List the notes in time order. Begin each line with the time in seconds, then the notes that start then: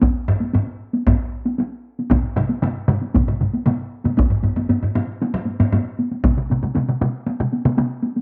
0.02 taiko, taiko high
0.28 taiko low-mid
0.40 taiko high
0.53 taiko low-mid, taiko high
0.93 taiko high
1.07 taiko, taiko low-mid, taiko high
1.45 taiko high
1.58 taiko high
1.99 taiko high
2.10 taiko, taiko low-mid, taiko mid, taiko high
2.36 taiko low-mid, taiko mid
2.50 taiko high
2.62 taiko low-mid, taiko mid, taiko high
2.88 taiko low-mid, taiko mid
3.01 taiko high
3.14 taiko, taiko low-mid, taiko mid, taiko high
3.28 taiko low-mid, taiko mid
3.41 taiko low-mid, taiko mid
3.53 taiko high
3.66 taiko low-mid, taiko mid, taiko high
4.04 taiko low-mid, taiko mid, taiko high
4.17 taiko, taiko low-mid, taiko high
4.30 taiko low-mid
4.43 taiko low-mid, taiko high
4.56 taiko low-mid, taiko high
4.69 taiko low-mid, taiko high
4.83 taiko low-mid
4.95 taiko low-mid, taiko high
5.22 taiko high
5.34 taiko low-mid
5.46 taiko high
5.60 taiko low-mid, taiko high
5.72 taiko low-mid, taiko high
5.99 taiko high
6.11 taiko high
6.24 taiko, taiko mid, taiko high
6.37 taiko mid
6.50 taiko mid, taiko high
6.63 taiko mid, taiko high
6.75 taiko mid, taiko high
6.89 taiko mid
7.01 taiko mid, taiko high
7.26 taiko high
7.40 taiko mid
7.53 taiko high
7.65 taiko mid, taiko high
7.77 taiko mid, taiko high
8.03 taiko high
8.16 taiko high